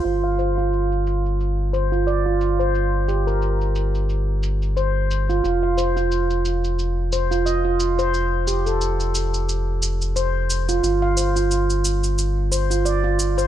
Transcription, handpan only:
X:1
M:4/4
L:1/16
Q:"Swing 16ths" 1/4=89
K:Gm
V:1 name="Handpan"
F f c F z6 c F d F z c | z2 G B z8 c3 F | F f c F z6 c F e F z c | z2 G A z8 c3 F |
F f c F z6 c F d F z c |]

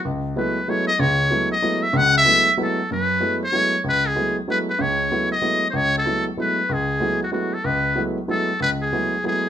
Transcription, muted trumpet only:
X:1
M:3/4
L:1/16
Q:"Swing" 1/4=189
K:F#dor
V:1 name="Muted trumpet"
z4 B4 c2 d2 | c6 d4 e2 | f2 e6 A4 | B6 c6 |
B2 G4 z2 B2 B2 | c6 d4- d3/2 ^B/2 | c2 A4 z2 B4 | G6 F2 F2 A2 |
B4- B/2 z3 z/2 A4 | B2 G6 G4 |]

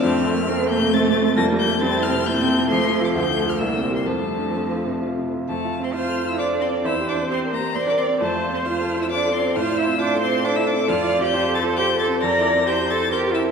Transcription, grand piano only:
X:1
M:3/4
L:1/8
Q:1/4=134
K:F
V:1 name="Grand piano"
(3F,, A, B, (3A, C C, (3C C, C | (3F,, G, A, (3G, E C, (3E C, E | (3F,, A, [FA] (3D,, A, [FA] (3C,, C [GB] | (3F,, C D (3C F C, (3F C, F |
(3F,, F C (3F A F (3c A C | (3E,, G C (3G B G (3c B C | (3F,, F C (3F A F (3c A C | (3A,, F C (3F A F (3c A C |
(3F,, F C (3F A F (3c A C | (3F,, E C (3E G E (3c G C |]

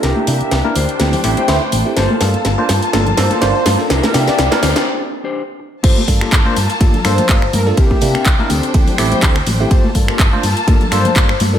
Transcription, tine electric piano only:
X:1
M:4/4
L:1/16
Q:"Swing 16ths" 1/4=124
K:Gdor
V:1 name="Tine electric piano"
z2 [B,DEG]3 [B,DEB] z2 [A,CEG]2 [A,CEG]2 [A,CEc] z2 [A,CEG] | z2 [B,DFA]3 [B,DFc] z2 [B,DFA]2 [B,DFA]2 [B,DFc] z2 [B,DFA] | z2 [B,DEG]3 [B,DEB] z8 z2 | z2 [B,DFA]3 [B,DFc] z2 [B,DFA]2 [B,DFA]2 [B,DFc] z2 [B,DFA] |
z2 [B,DEG]3 [B,DEB] z2 [A,CEG]2 [A,CEG]2 [A,CEc] z2 [A,CEG] | z2 [B,DFA]3 [B,DFc] z2 [B,DFA]2 [B,DFA]2 [B,DF] z2 [B,DFA] |]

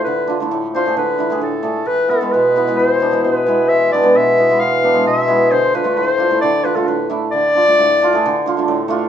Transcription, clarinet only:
X:1
M:4/4
L:1/16
Q:1/4=132
K:none
V:1 name="Clarinet"
B4 z2 c2 B4 A4 | B2 A2 B4 c4 B4 | e2 d2 e4 f4 e4 | c2 B2 c4 d2 B A B2 z2 |
d12 z4 |]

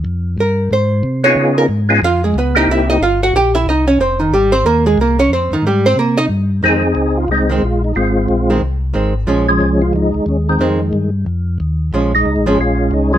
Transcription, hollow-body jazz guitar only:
X:1
M:4/4
L:1/8
Q:"Swing" 1/4=182
K:Fm
V:1 name="Hollow-body jazz guitar"
z2 B2 c3 d- | d B z2 [Ff] [A,A] [_C_c] [Ee] | [=E=e] [^D^d] [Ff] [_G_g] [=G=g] [Ee] [Dd] [_D_d] | [Cc] [E,E] [G,G] [Cc] [B,B] [A,A] [B,B] [Dd] |
[Cc] [E,E] [G,G] [Cc] [B,B] [Ee] z2 | [E,A,C] z4 [E,A,C] z2 | z3 [E,A,C] z2 [E,A,C] z | [F,A,D] z6 z |
[E,A,C] z6 z | [F,A,D] z2 [F,A,D] z4 |]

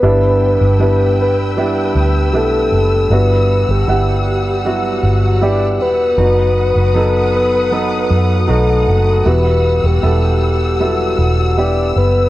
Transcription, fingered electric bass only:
X:1
M:4/4
L:1/16
Q:1/4=78
K:Em
V:1 name="Fingered electric bass" clef=bass
G,,,3 G,,,6- G,,, D,,2 B,,,2 F,,,2 | G,,,3 G,,, G,,,6 G,,,4 E,,,2 | F,,,3 F,,,6- F,,, F,,2 B,,,2 F,,,2 | E,,,3 E,,, E,,,6 E,,,4 F,,,2 |]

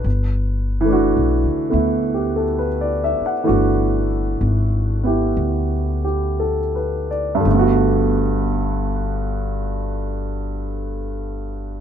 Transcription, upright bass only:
X:1
M:4/4
L:1/8
Q:"Swing" 1/4=61
K:G
V:1 name="Upright bass" clef=bass
G,,,2- (3G,,, B,,, D,, D,,3 z | G,,,2 _A,,,2 D,,4 | G,,,8 |]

